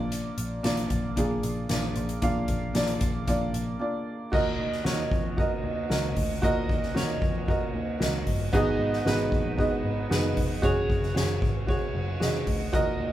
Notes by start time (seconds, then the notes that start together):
Already playing: A#1 A#3 D4 F4 D5
0.12 closed hi-hat
0.38 A#1, closed hi-hat
0.63 A#1 A#3 D4 F4 D5, snare, closed hi-hat
0.77 closed hi-hat
0.90 A#1, kick, closed hi-hat
1.16 A#1 A#3 D4 F4 G#4, kick, closed hi-hat
1.43 A#1, closed hi-hat
1.69 A#1 A#3 D4 F4 D5, snare, closed hi-hat
1.96 A#1, closed hi-hat
2.09 closed hi-hat
2.22 A#1 A#3 D4 F4 F5, kick, closed hi-hat
2.48 A#1, kick, closed hi-hat
2.74 A#1 A#3 D4 F4 D5, snare, closed hi-hat
2.87 closed hi-hat
3.01 A#1, kick, closed hi-hat
3.27 A#1 A#3 D4 F4 D5, kick, closed hi-hat
3.54 A#1, closed hi-hat
3.79 A#3 D4 F4 D5
4.32 D#2 A#2 F#4 A#4 D#5, kick, crash
4.59 D#2, ride
4.72 snare
4.84 D#2 F#4 A#4 C#5, snare, ride
5.11 F2, kick, ride
5.37 F#4 A#4 D#5, kick, ride
5.64 D#2, ride
5.89 C#2 F#4 A#4 D#5, snare, ride
6.16 D2, kick, open hi-hat, ride
6.30 ride
6.42 D#2 A#2 F#4 A#4 D#5, kick, hi-hat pedal, ride
6.69 D#2, kick, ride
6.82 snare, ride
6.94 D#2 F#4 A#4 C#5, snare, ride
7.22 F2, kick, ride
7.48 F#4 A#4 D#5, kick, ride
7.74 D#2, ride
8.00 C#2 F#4 A#4 D#5, snare, ride
8.27 G1, kick, open hi-hat, ride
8.40 ride
8.53 G#1 G#2 D#3 B3 D#4 F#4 G#4 D#5, kick, hi-hat pedal, ride
8.79 G#1, ride
8.92 snare, ride
9.05 G#1 B3 D#4 F#4 G#4 B4, snare, ride
9.32 A#1, kick, ride
9.58 B3 D#4 F#4 G#4 D#5, kick, ride
9.85 G#1, ride
10.09 F#1 B3 D#4 F#4 G#4 B4, snare, ride
10.37 F1, kick, open hi-hat, ride
10.50 ride
10.62 F#1 C#3 F#4 G#4 C#5, kick, hi-hat pedal, ride
10.89 F#1, kick, ride
11.02 snare, ride
11.14 F#1 F#4 G#4 C#5, snare, ride
11.42 G#1, kick, ride
11.67 F#4 G#4 C#5, kick, ride
11.95 F#1, ride
12.20 F1 F#4 G#4 D#5, snare, ride
12.47 D2, kick, open hi-hat, ride
12.60 ride
12.73 D#2 A#2 F#4 A#4 D#5, kick, hi-hat pedal, ride
13.00 D#2, ride